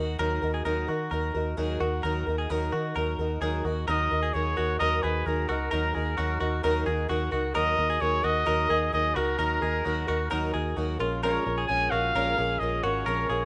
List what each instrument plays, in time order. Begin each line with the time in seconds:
Already playing: fingered electric bass D#2, twelve-string acoustic guitar F#4 A#4
0.00 twelve-string acoustic guitar D#4
0.19 fingered electric bass D#2, twelve-string acoustic guitar D#3 F#3 D#4 F#4 A#4
0.42 fingered electric bass D#2, twelve-string acoustic guitar D#4 F#4 A#4
0.54 clean electric guitar G#4
0.65 fingered electric bass D#2, twelve-string acoustic guitar D#3 F#3 D#4 F#4 A#4
0.88 fingered electric bass D#3, twelve-string acoustic guitar D#4 F#4 A#4
1.11 fingered electric bass D#2, twelve-string acoustic guitar F#3 D#4 F#4 A#4
1.34 fingered electric bass D#2, twelve-string acoustic guitar D#4 F#4 A#4
1.57 fingered electric bass D#2, twelve-string acoustic guitar D#3 F#3 D#4 F#4 A#4, clean electric guitar G#4
1.80 fingered electric bass D#2, twelve-string acoustic guitar D#4 F#4 A#4
2.04 fingered electric bass D#2, twelve-string acoustic guitar D#3 F#3 D#4 F#4 A#4
2.27 fingered electric bass D#2, twelve-string acoustic guitar D#4 F#4 A#4
2.38 clean electric guitar G#4
2.50 fingered electric bass D#2, twelve-string acoustic guitar D#3 F#3 D#4 F#4 A#4
2.72 fingered electric bass D#3, twelve-string acoustic guitar D#4 F#4 A#4
2.96 fingered electric bass D#2, twelve-string acoustic guitar F#3 D#4 F#4 A#4
3.18 fingered electric bass D#2, twelve-string acoustic guitar D#4 F#4 A#4
3.41 fingered electric bass D#2, twelve-string acoustic guitar D#3 F#3 D#4 F#4 A#4, clean electric guitar G#4
3.65 fingered electric bass D#2, twelve-string acoustic guitar D#4 F#4 A#4
3.88 fingered electric bass D#2, twelve-string acoustic guitar D#3 F#3 D#4 F#4 A#4, trumpet D#5
4.11 fingered electric bass D#2, twelve-string acoustic guitar D#4 F#4 A#4
4.23 clean electric guitar G#4
4.34 fingered electric bass D#2, twelve-string acoustic guitar F#3 D#4 F#4 A#4, trumpet C#5
4.57 fingered electric bass D#2, twelve-string acoustic guitar D#4 F#4 A#4
4.79 fingered electric bass D#2, twelve-string acoustic guitar D#3 F#3 D#4 F#4 A#4, trumpet D#5
5.03 fingered electric bass D#2, twelve-string acoustic guitar D#4 F#4 A#4, clean electric guitar G#4, trumpet B4
5.26 fingered electric bass D#2, twelve-string acoustic guitar F#3 D#4 F#4 A#4, trumpet A#4
5.49 fingered electric bass C#2, twelve-string acoustic guitar D#4 F#4 A#4, trumpet A#4
5.72 fingered electric bass D#2, twelve-string acoustic guitar D#3 F#3 D#4 F#4 A#4
5.94 fingered electric bass D#2, twelve-string acoustic guitar D#4 F#4 A#4, clean electric guitar G#4
6.17 fingered electric bass D#2, twelve-string acoustic guitar F#3 D#4 F#4 A#4
6.40 fingered electric bass D#2, twelve-string acoustic guitar D#4 F#4 A#4
6.63 fingered electric bass D#2, twelve-string acoustic guitar D#3 F#3 D#4 F#4 A#4
6.86 fingered electric bass D#2, twelve-string acoustic guitar D#4 F#4 A#4, clean electric guitar G#4
7.08 fingered electric bass D#2, twelve-string acoustic guitar F#3 D#4 F#4 A#4
7.31 fingered electric bass C#2, twelve-string acoustic guitar D#4 F#4 A#4
7.54 fingered electric bass D#2, twelve-string acoustic guitar D#3 F#3 D#4 F#4 A#4, trumpet D#5
7.77 fingered electric bass D#2, twelve-string acoustic guitar D#4 F#4 A#4
7.90 clean electric guitar G#4
8.00 fingered electric bass D#2, twelve-string acoustic guitar F#3 D#4 F#4 A#4, trumpet C#5
8.23 fingered electric bass D#2, twelve-string acoustic guitar D#4 F#4 A#4, trumpet D#5
8.46 fingered electric bass D#2, twelve-string acoustic guitar D#3 F#3 D#4 F#4 A#4
8.69 fingered electric bass D#2, twelve-string acoustic guitar D#4 F#4 A#4, clean electric guitar G#4
8.92 fingered electric bass D#2, twelve-string acoustic guitar F#3 D#4 F#4 A#4, trumpet D#5
9.16 fingered electric bass C#2, twelve-string acoustic guitar D#4 F#4 A#4, trumpet A#4
9.38 fingered electric bass D#2, twelve-string acoustic guitar D#3 F#3 D#4 F#4 A#4
9.61 fingered electric bass D#2, twelve-string acoustic guitar D#4 F#4 A#4, clean electric guitar G#4
9.84 fingered electric bass D#2, twelve-string acoustic guitar F#3 D#4 F#4 A#4
10.07 fingered electric bass D#2, twelve-string acoustic guitar D#4 F#4 A#4
10.30 fingered electric bass D#2, twelve-string acoustic guitar D#3 F#3 D#4 F#4 A#4
10.53 fingered electric bass D#2, twelve-string acoustic guitar D#4 F#4 A#4, clean electric guitar G#4
10.76 fingered electric bass D#2, twelve-string acoustic guitar F#3 D#4 F#4 A#4
10.99 fingered electric bass A#1, twelve-string acoustic guitar G#3 C#4 F4 A#4
11.22 twelve-string acoustic guitar A#2 F3 G#3 C#4 F4 A#4, trumpet C#5
11.45 fingered electric bass A#1, twelve-string acoustic guitar G#3 C#4 F4 A#4
11.58 clean electric guitar G#4
11.67 fingered electric bass A#1, twelve-string acoustic guitar G#3 C#4 F4 A#4, trumpet G#5
11.90 fingered electric bass A#1, twelve-string acoustic guitar G#3 C#4 F4 A#4, clean electric guitar F#4, trumpet F5
12.15 fingered electric bass A#1, twelve-string acoustic guitar A#2 F3 G#3 C#4 F4 A#4
12.37 fingered electric bass A#1, twelve-string acoustic guitar G#3 C#4 F4 A#4, clean electric guitar G#4
12.59 fingered electric bass A#1, twelve-string acoustic guitar G#3 C#4 F4 A#4, trumpet D#5
12.83 fingered electric bass G#1, twelve-string acoustic guitar G#3 C#4 F4 A#4, clean electric guitar F#4, trumpet C#5
13.06 fingered electric bass A#1, twelve-string acoustic guitar A#2 F3 G#3 C#4 F4 A#4
13.29 fingered electric bass A#1, twelve-string acoustic guitar G#3 C#4 F4 A#4, clean electric guitar G#4